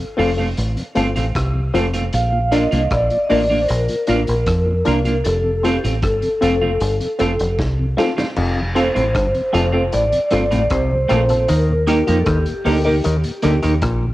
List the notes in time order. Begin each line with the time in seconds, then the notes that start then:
0.17 F1 A3 C4 F4 A4, open hi-hat
0.36 F2 C3 A3 C4 F4 A4
0.57 A1, closed hi-hat
0.76 F2 C3, closed hi-hat
0.95 G1 A3 C4 F4 A4, closed hi-hat
1.15 A1 F2 C3 A3 C4 F4, closed hi-hat
1.35 C2, kick, cross-stick, closed hi-hat
1.54 F2 C3
1.73 F1 A3 C4 F4 A4, closed hi-hat
1.93 F2 C3 A3 C4 F4, closed hi-hat
2.13 A#1 F5, closed hi-hat
2.33 A#2 F3
2.52 A#3 D4 F4 A#4 D#5, closed hi-hat
2.71 C2 A#2 F3 A#3 D4 F4, closed hi-hat
2.91 A#1 D5, kick, cross-stick, closed hi-hat
3.10 A#2 F3, closed hi-hat
3.24 D#5
3.30 A1 A#3 D4 F4 A#4 D5, open hi-hat
3.50 A#2 F3 A#3 D4 F4
3.62 C5
3.68 A#1 A#4, closed hi-hat
3.88 A#2 F3, closed hi-hat
4.07 A1 A#3 D4 F4 A#4, closed hi-hat
4.27 A#1 A#2 F3, closed hi-hat
4.46 F2, kick, cross-stick, closed hi-hat
4.66 A#2 F3
4.85 C2 A#3 D4 F4 A#4, closed hi-hat
5.05 A#2 F3 A#3 D4 F4, closed hi-hat
5.24 F1 A4, closed hi-hat
5.44 F2 C3
5.63 A3 C4 F4 G4 A4, closed hi-hat
5.83 A1 F2 C3 A3 C4 F4, closed hi-hat
6.02 G1 A4, kick, cross-stick, closed hi-hat
6.22 F2 C3, closed hi-hat
6.41 F1 A3 C4 F4 A4, closed hi-hat
6.61 F2 C3 A3 C4 F4 A4
6.80 G1, closed hi-hat
7.01 F2 C3, closed hi-hat
7.19 F1 A3 C4 F4 A4, closed hi-hat
7.39 F1 F2 C3, closed hi-hat
7.59 C2, kick, snare
7.79 F2 C3
7.97 A3 C4 F4 A4, snare
8.17 F2 C3 A3 C4 F4, snare
8.36 F1 F2, crash
8.56 F2 C3
8.75 A3 C4 F4 A4 C5, closed hi-hat
8.94 A1 F2 A2 C3 A3 C4 F4, closed hi-hat
9.15 G1 G2, kick, cross-stick, closed hi-hat
9.34 F2 C3, closed hi-hat
9.53 F1 F2 A3 C4 F4 A4, closed hi-hat
9.72 A3 C4 F4 A4
9.92 A1 A2 D5, closed hi-hat
10.12 F2 C3, closed hi-hat
10.30 G1 G2 A3 C4 F4 A4, closed hi-hat
10.51 A1 F2 A2 C3 A3 C4 F4, closed hi-hat
10.70 C2 C3 C5, kick, cross-stick, closed hi-hat
10.91 F2 C3
11.09 A#1 A#2 A3 C4 F4 A4, cross-stick, closed hi-hat
11.29 F2 C3 C4 F4 A4, closed hi-hat
11.48 D#2 D#3 A#4, closed hi-hat
11.69 D#2 A#2
11.87 G3 A#3 D#4 G4 A#4, closed hi-hat
12.07 D#2 F2 A#2 F3 A#3 D#4 G4, closed hi-hat
12.20 A4
12.26 D#2 D#3 G4, kick, cross-stick, closed hi-hat
12.46 D#2 A#2, closed hi-hat
12.65 D2 D3 G3 A#3 D#4 G4 A#4, open hi-hat
12.85 D#2 A#2 A#3 D#4 G4 A#4
13.04 D#2 D#3, closed hi-hat
13.24 D#2 A#2, closed hi-hat
13.42 D2 D3 G3 A#3 D#4 G4 A#4, closed hi-hat
13.63 D#2 A#2 D#3 A#3 D#4 G4, closed hi-hat
13.82 A#1 A#2, kick, cross-stick, closed hi-hat
14.03 D#2 A#2